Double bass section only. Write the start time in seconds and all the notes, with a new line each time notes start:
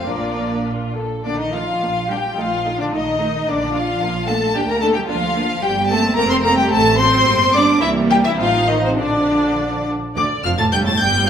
0.06 A#1
1.25 A#1
1.81 A#1
2.37 A#1
2.91 A#1
3.47 A#1
4.01 A#1
4.55 D2
5.09 D2
5.63 G1
6.17 F1
6.71 A1
7.26 G1
7.81 C2
8.39 A1
8.98 A#1
10.16 D2
10.44 F1
10.72 G1
11.01 G1